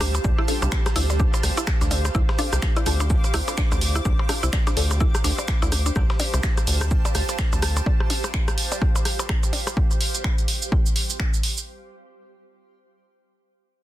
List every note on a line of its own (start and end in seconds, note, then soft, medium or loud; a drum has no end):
0.00 0.19 D2 medium
0.00 0.05 D4 medium
0.00 9.77 G4 medium
0.00 9.77 C5 medium
0.00 9.77 F5 medium
0.00 1.34 A5 medium
0.00 cross-stick medium
0.00 snare soft
0.00 open hi-hat medium
0.00 shaker medium
0.15 cabasa medium
0.15 percussion blips medium
0.24 0.32 D2 loud
0.24 kick loud
0.24 percussion blips medium
0.24 shaker medium
0.38 0.42 E4 loud
0.38 cross-stick soft
0.38 percussion blips soft
0.48 0.61 D4 medium
0.48 0.61 F4 medium
0.48 0.61 A4 medium
0.48 open hi-hat medium
0.48 percussion blips loud
0.48 shaker medium
0.62 0.69 C2 medium
0.62 0.65 D4 medium
0.62 cross-stick soft
0.62 cabasa medium
0.62 percussion blips medium
0.72 finger snap loud
0.72 kick loud
0.72 snare loud
0.72 shaker medium
0.86 cross-stick medium
0.86 snare medium
0.86 closed hi-hat soft
0.86 cabasa soft
0.86 percussion blips medium
0.96 1.26 D2 medium
0.96 1.04 D4 medium
0.96 1.00 E4 loud
0.96 1.04 F4 medium
0.96 1.04 A4 loud
0.96 open hi-hat medium
1.10 snare soft
1.10 percussion blips medium
1.10 cabasa medium
1.10 percussion blips soft
1.20 1.24 D4 medium
1.20 kick loud
1.20 cross-stick soft
1.20 shaker medium
1.32 5.15 D6 medium
1.32 cabasa soft
1.32 percussion blips medium
1.43 1.51 D2 medium
1.43 cross-stick soft
1.43 snare medium
1.43 open hi-hat medium
1.43 shaker medium
1.57 1.61 E4 loud
1.57 cabasa medium
1.57 percussion blips medium
1.67 finger snap loud
1.67 kick loud
1.67 cross-stick medium
1.67 snare loud
1.67 shaker medium
1.81 2.10 D2 medium
1.81 1.84 D4 medium
1.81 snare soft
1.81 cabasa soft
1.81 percussion blips soft
1.91 open hi-hat medium
1.91 percussion blips medium
1.91 shaker medium
2.05 cross-stick soft
2.05 cabasa medium
2.05 percussion blips medium
2.15 2.23 D2 loud
2.15 2.19 E4 loud
2.15 kick loud
2.15 shaker medium
2.29 cross-stick soft
2.29 snare medium
2.29 percussion blips medium
2.39 2.43 D4 medium
2.39 2.46 D4 loud
2.39 2.46 F4 medium
2.39 2.46 A4 loud
2.39 open hi-hat medium
2.39 percussion blips medium
2.39 shaker medium
2.53 2.59 C2 medium
2.53 cross-stick medium
2.53 cabasa medium
2.53 percussion blips soft
2.62 finger snap medium
2.62 kick loud
2.62 snare loud
2.62 shaker medium
2.76 2.80 E4 loud
2.76 closed hi-hat soft
2.76 percussion blips medium
2.76 cabasa soft
2.76 percussion blips medium
2.86 3.17 D2 medium
2.86 2.94 D4 medium
2.86 2.94 F4 medium
2.86 2.94 A4 loud
2.86 cross-stick soft
2.86 open hi-hat medium
2.86 shaker medium
3.00 3.04 D4 medium
3.00 cabasa medium
3.00 percussion blips medium
3.10 kick loud
3.10 cross-stick soft
3.10 shaker medium
3.24 cabasa soft
3.24 percussion blips soft
3.34 3.42 D2 medium
3.34 3.39 E4 loud
3.34 cross-stick medium
3.34 open hi-hat medium
3.34 shaker medium
3.48 3.53 D4 medium
3.48 3.53 F4 medium
3.48 3.53 A4 medium
3.48 closed hi-hat soft
3.48 cabasa medium
3.48 percussion blips medium
3.58 3.62 D4 medium
3.58 finger snap loud
3.58 kick loud
3.58 snare loud
3.58 percussion blips medium
3.58 shaker medium
3.72 4.00 D2 medium
3.72 cross-stick soft
3.72 percussion blips medium
3.72 cabasa soft
3.72 percussion blips medium
3.81 snare soft
3.81 open hi-hat medium
3.81 shaker medium
3.95 3.99 E4 loud
3.95 cross-stick soft
3.95 cabasa soft
3.95 percussion blips soft
4.05 4.13 D2 loud
4.05 4.10 D4 medium
4.05 kick loud
4.05 cross-stick soft
4.05 shaker medium
4.19 percussion blips medium
4.29 4.42 D4 medium
4.29 4.42 F4 medium
4.29 4.42 A4 medium
4.29 cross-stick medium
4.29 open hi-hat medium
4.29 percussion blips medium
4.29 shaker medium
4.43 4.50 C2 medium
4.43 4.46 E4 loud
4.43 cabasa medium
4.43 percussion blips soft
4.53 finger snap medium
4.53 kick loud
4.53 snare loud
4.53 percussion blips medium
4.53 shaker medium
4.67 4.70 D4 medium
4.67 cross-stick soft
4.67 snare medium
4.67 closed hi-hat soft
4.67 cabasa soft
4.67 percussion blips medium
4.77 5.07 D2 medium
4.77 4.85 D4 medium
4.77 4.85 F4 medium
4.77 4.85 A4 loud
4.77 open hi-hat medium
4.91 cross-stick soft
4.91 snare soft
4.91 cabasa soft
4.91 percussion blips medium
5.00 5.05 E4 loud
5.00 kick loud
5.00 shaker medium
5.12 8.96 A5 medium
5.12 cross-stick medium
5.12 cabasa soft
5.12 percussion blips soft
5.24 5.32 D2 medium
5.24 5.29 D4 medium
5.24 snare medium
5.24 open hi-hat medium
5.24 shaker medium
5.38 percussion blips medium
5.38 cabasa medium
5.38 percussion blips medium
5.48 finger snap medium
5.48 kick loud
5.48 cross-stick soft
5.48 snare loud
5.48 shaker medium
5.62 5.91 D2 medium
5.62 5.65 E4 loud
5.62 snare soft
5.62 cabasa soft
5.62 percussion blips medium
5.72 cross-stick soft
5.72 open hi-hat medium
5.72 percussion blips medium
5.72 shaker medium
5.86 5.89 D4 medium
5.86 cabasa soft
5.86 percussion blips soft
5.96 6.04 D2 loud
5.96 kick loud
5.96 cross-stick medium
5.96 shaker medium
6.10 snare medium
6.10 percussion blips medium
6.20 open hi-hat medium
6.20 percussion blips medium
6.20 shaker medium
6.34 6.40 C2 medium
6.34 cross-stick soft
6.34 cabasa medium
6.34 percussion blips medium
6.43 finger snap medium
6.43 kick loud
6.43 snare loud
6.43 shaker medium
6.57 cross-stick soft
6.57 closed hi-hat soft
6.57 cabasa soft
6.57 percussion blips soft
6.67 6.98 D2 medium
6.67 open hi-hat medium
6.67 shaker medium
6.81 cross-stick medium
6.81 cabasa medium
6.81 percussion blips medium
6.91 kick loud
6.91 shaker medium
7.05 percussion blips medium
7.05 cabasa soft
7.05 percussion blips medium
7.15 7.23 D2 medium
7.15 cross-stick soft
7.15 open hi-hat medium
7.15 shaker medium
7.29 closed hi-hat soft
7.29 cabasa medium
7.29 percussion blips soft
7.39 finger snap medium
7.39 kick loud
7.39 cross-stick soft
7.39 snare loud
7.39 shaker medium
7.53 7.81 D2 medium
7.53 percussion blips medium
7.53 cabasa soft
7.53 percussion blips medium
7.62 cross-stick medium
7.62 snare soft
7.62 open hi-hat medium
7.62 shaker medium
7.76 cabasa medium
7.76 percussion blips medium
7.86 kick loud
7.86 percussion blips medium
8.00 cross-stick soft
8.00 percussion blips soft
8.10 open hi-hat medium
8.10 percussion blips medium
8.24 cross-stick soft
8.24 cabasa medium
8.24 percussion blips medium
8.34 finger snap medium
8.34 kick loud
8.48 cross-stick medium
8.48 closed hi-hat soft
8.48 cabasa soft
8.48 percussion blips medium
8.58 open hi-hat medium
8.72 percussion blips medium
8.72 cabasa medium
8.72 percussion blips soft
8.81 kick loud
8.81 cross-stick soft
8.96 cabasa soft
8.96 percussion blips medium
9.05 cross-stick soft
9.05 open hi-hat medium
9.19 cabasa medium
9.19 percussion blips medium
9.29 finger snap loud
9.29 kick loud
9.29 cross-stick medium
9.43 cabasa soft
9.43 percussion blips soft
9.53 open hi-hat medium
9.53 percussion blips medium
9.67 cross-stick soft
9.67 cabasa medium
9.67 percussion blips medium
9.77 kick loud
9.91 cabasa soft
10.01 open hi-hat medium
10.15 closed hi-hat soft
10.15 cabasa medium
10.24 finger snap medium
10.24 kick loud
10.38 closed hi-hat soft
10.38 cabasa soft
10.48 open hi-hat medium
10.62 cabasa medium
10.72 kick loud
10.86 cabasa soft
10.96 open hi-hat medium
11.10 cabasa medium
11.20 finger snap loud
11.20 kick loud
11.34 cabasa soft
11.43 open hi-hat medium
11.57 cabasa medium